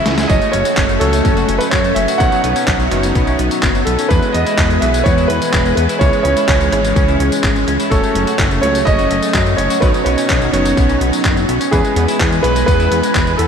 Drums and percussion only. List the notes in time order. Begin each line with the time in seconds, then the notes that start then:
0.06 snare, closed hi-hat
0.18 snare, closed hi-hat, tambourine
0.30 kick, closed hi-hat, tambourine
0.42 closed hi-hat, tambourine
0.53 closed hi-hat
0.65 closed hi-hat, tambourine
0.77 kick, clap, closed hi-hat, tambourine
0.89 closed hi-hat, tambourine
1.01 closed hi-hat
1.13 closed hi-hat, tambourine
1.25 kick, closed hi-hat, tambourine
1.37 closed hi-hat, tambourine
1.49 closed hi-hat
1.61 closed hi-hat, tambourine
1.72 kick, clap, closed hi-hat, tambourine
1.84 closed hi-hat, tambourine
1.96 closed hi-hat
2.08 closed hi-hat, tambourine
2.20 kick, closed hi-hat, tambourine
2.32 closed hi-hat, tambourine
2.44 closed hi-hat
2.56 closed hi-hat, tambourine
2.68 kick, clap, closed hi-hat, tambourine
2.80 closed hi-hat, tambourine
2.91 closed hi-hat
3.03 closed hi-hat, tambourine
3.15 kick, closed hi-hat, tambourine
3.27 closed hi-hat, tambourine
3.39 closed hi-hat
3.51 closed hi-hat, tambourine
3.63 kick, clap, closed hi-hat, tambourine
3.75 closed hi-hat, tambourine
3.87 closed hi-hat
3.99 closed hi-hat, tambourine
4.11 kick, closed hi-hat, tambourine
4.22 closed hi-hat, tambourine
4.34 closed hi-hat
4.46 closed hi-hat, tambourine
4.58 kick, clap, closed hi-hat, tambourine
4.70 closed hi-hat, tambourine
4.82 closed hi-hat
4.94 closed hi-hat, tambourine
5.06 kick, closed hi-hat, tambourine
5.18 closed hi-hat, tambourine
5.30 closed hi-hat
5.42 closed hi-hat, tambourine
5.53 kick, clap, closed hi-hat, tambourine
5.66 closed hi-hat, tambourine
5.77 closed hi-hat
5.89 closed hi-hat, tambourine
6.01 kick, closed hi-hat, tambourine
6.13 closed hi-hat, tambourine
6.25 closed hi-hat
6.37 closed hi-hat, tambourine
6.49 kick, clap, closed hi-hat, tambourine
6.61 closed hi-hat, tambourine
6.72 closed hi-hat
6.85 closed hi-hat, tambourine
6.96 kick, closed hi-hat, tambourine
7.08 closed hi-hat, tambourine
7.20 closed hi-hat
7.32 closed hi-hat, tambourine
7.44 kick, clap, closed hi-hat, tambourine
7.56 closed hi-hat, tambourine
7.68 closed hi-hat
7.80 closed hi-hat, tambourine
7.91 kick, closed hi-hat, tambourine
8.04 closed hi-hat, tambourine
8.15 closed hi-hat
8.27 closed hi-hat, tambourine
8.39 kick, clap, closed hi-hat, tambourine
8.51 closed hi-hat, tambourine
8.63 closed hi-hat
8.75 closed hi-hat, tambourine
8.87 kick, closed hi-hat, tambourine
8.99 closed hi-hat, tambourine
9.11 closed hi-hat
9.23 closed hi-hat, tambourine
9.34 kick, clap, closed hi-hat, tambourine
9.46 closed hi-hat, tambourine
9.58 closed hi-hat
9.70 closed hi-hat, tambourine
9.82 kick, closed hi-hat, tambourine
9.94 closed hi-hat, tambourine
10.06 closed hi-hat
10.18 closed hi-hat, tambourine
10.30 kick, clap, closed hi-hat, tambourine
10.42 closed hi-hat, tambourine
10.54 closed hi-hat
10.65 closed hi-hat, tambourine
10.77 kick, closed hi-hat, tambourine
10.89 closed hi-hat, tambourine
11.01 closed hi-hat
11.13 closed hi-hat, tambourine
11.25 kick, clap, closed hi-hat, tambourine
11.37 closed hi-hat, tambourine
11.49 closed hi-hat
11.61 closed hi-hat, tambourine
11.73 kick, closed hi-hat, tambourine
11.85 closed hi-hat, tambourine
11.96 closed hi-hat
12.08 closed hi-hat, tambourine
12.20 kick, clap, closed hi-hat, tambourine
12.32 closed hi-hat, tambourine
12.44 closed hi-hat
12.56 closed hi-hat, tambourine
12.68 kick, closed hi-hat, tambourine
12.80 closed hi-hat, tambourine
12.92 closed hi-hat
13.03 closed hi-hat, tambourine
13.15 kick, clap, closed hi-hat, tambourine
13.27 closed hi-hat, tambourine
13.39 closed hi-hat